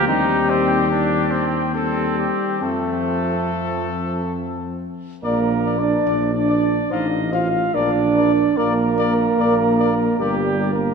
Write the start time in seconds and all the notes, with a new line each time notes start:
0.07 D#2 G3 C4 D#4 G4
0.50 C4
0.91 D4
1.31 C4
1.74 G3 C4 A4
2.19 G4
2.62 F2 F3 A3 C4 A4
5.23 A#1 A#3 A#4 D5
5.65 D5
5.79 D4 D5
6.07 A#1 D5
6.35 D4 D5
6.49 D5
6.90 A1 D#4 C5 D#5 F5
7.32 F4 C5 F5
7.74 A#1 D4 A#4 D5
8.15 A#4 D5
8.57 A#1 A#3 A#4 D5
8.98 A#4 D5
9.38 A#1 A#4 D5
9.79 A#4 D5
10.19 G1 G3 G4 A#4 D5
10.60 A#4 D5
10.73 A#3 A#4